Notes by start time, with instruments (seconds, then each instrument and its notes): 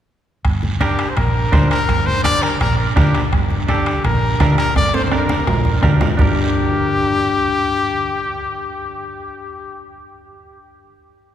0.45 fingered electric bass G1, bombo low, bombo rim, high timbale, long guiro
0.63 high conga
0.81 clean electric guitar D4 G4 A#4, trumpet G4, bombo rim, high conga, high timbale, short guiro
0.99 bombo rim, high timbale, short guiro
1.10 trumpet C5
1.16 fingered electric bass A#1, trumpet A#4, bombo rim, low conga, high timbale, long guiro
1.52 fingered electric bass D2, clean electric guitar D4 G4 C5, bombo low, bombo rim, high conga, high timbale, low timbale, short guiro
1.71 trumpet A#4, bombo rim, high timbale, short guiro
1.89 fingered electric bass G1, bombo low, bombo rim, low conga, high timbale, long guiro
2.06 trumpet C5, high conga
2.24 clean electric guitar D4 G4 A#4, trumpet D5, bombo rim, high conga, high timbale, short guiro
2.42 trumpet A#4, bombo rim, high timbale, short guiro
2.60 fingered electric bass A#1, trumpet A#4, bombo rim, low conga, high timbale, long guiro
2.78 trumpet A#4
2.96 fingered electric bass D2, clean electric guitar D4 G4 A#4, trumpet G4, bombo low, bombo rim, high conga, low conga, high timbale, low timbale, short guiro
3.14 bombo rim, high timbale, short guiro
3.33 fingered electric bass G1, bombo low, bombo rim, high timbale, long guiro
3.50 high conga
3.68 clean electric guitar D4 G4 A4, trumpet G4, bombo rim, high conga, high timbale, short guiro
3.86 bombo rim, high timbale, short guiro
4.04 fingered electric bass A#1, trumpet A#4, bombo rim, low conga, high timbale, long guiro
4.40 fingered electric bass D2, clean electric guitar D4 G4 A#4, bombo low, bombo rim, high conga, high timbale, low timbale, short guiro
4.58 trumpet A#4, bombo rim, high timbale, short guiro
4.76 fingered electric bass G1, trumpet D5, bombo low, bombo rim, high conga, high timbale, long guiro
4.94 trumpet C5, high conga, high timbale
5.05 trumpet C5
5.11 clean electric guitar D4 G4 A#4, trumpet A#4, bombo rim, high timbale, short guiro
5.29 bombo rim, high conga, short guiro
5.47 fingered electric bass A#1, bombo rim, low conga, low timbale, long guiro
5.65 low conga
5.83 fingered electric bass D2, clean electric guitar D4 G4 A#4, bombo low, bombo rim, low conga, low timbale, short guiro
6.01 bombo rim, low conga, low timbale, short guiro
6.17 fingered electric bass G1, clean electric guitar D4 G4 A#4, trumpet G4, bombo low, low conga, low timbale, long guiro